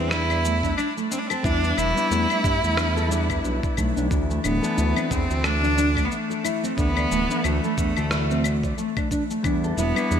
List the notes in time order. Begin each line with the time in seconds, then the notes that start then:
Already playing: E2 G3 B3 C4 D4 E4 B4
0.11 D4 E4, cross-stick, cabasa
0.30 D5, cabasa, claves
0.45 A3, cabasa
0.63 D4, kick, cabasa
0.77 D4, cabasa, claves
0.97 A3, cabasa
1.11 C4 D4, cabasa
1.19 D4
1.27 C4 A4, cabasa, claves
1.43 E2 G3 B3 D4 E4, kick, cabasa
1.63 B3, cabasa
1.77 E1 D4 E4, cabasa, claves
1.94 G3 B3 D4 E4 D5, cabasa
2.11 E2 A3, cabasa
2.30 D4, cabasa, claves
2.44 G2 D4, kick, cabasa
2.63 E2 A3, cabasa
2.77 D4, cross-stick, cabasa, claves
2.96 A4, cabasa
3.09 G3 B3 D4 E4, cabasa
3.13 E4
3.30 B3, kick, cabasa, claves
3.44 B1 D4, cabasa
3.63 D5, kick, cabasa
3.77 B1 A3, kick, cabasa, claves
3.96 B1 D4, cabasa
4.09 D2 E3 A3 D4 E4, kick, cabasa
4.30 A3, cabasa
4.44 D1 B3 D4, cabasa, claves
4.61 E3 A3 D4 A4, cabasa
4.65 E4
4.77 D2 E4, cabasa
4.96 C4, cabasa, claves
5.10 E2 C4 D4, kick, cabasa
5.30 D2 D5, cabasa
5.44 A3 D4, cross-stick, cabasa, claves
5.63 D4, cabasa
5.77 D4, cabasa
5.97 A3, kick, cabasa, claves
6.05 B3
6.11 A3 D4, cabasa
6.30 A4, cabasa
6.44 E4, cabasa, claves
6.63 C4, cabasa
6.77 D2 E3 A3 B3 D4 E4, kick, cabasa
6.97 D5, cabasa, claves
7.11 D1 A3, cabasa
7.28 E3 A3 D4, cabasa
7.32 E4
7.44 D2 A3 D4, cabasa, claves
7.64 A3, cabasa
7.78 E2 D4, kick, cabasa
7.97 D2 A4, cabasa, claves
8.11 E4, cross-stick, cabasa
8.30 C4, cabasa
8.44 D4, cabasa, claves
8.63 D5, kick, cabasa
8.78 A3, cabasa
8.97 D4, kick, cabasa, claves
9.11 D4, kick, cabasa
9.30 A3, cabasa
9.43 E2 G3 B3 D4 E4, kick, cabasa, claves
9.64 A4, cabasa
9.77 E1 B3 E4, cabasa
9.94 G3 B3 D4 B4, cabasa, claves
9.98 E4
10.11 E2 D4, cabasa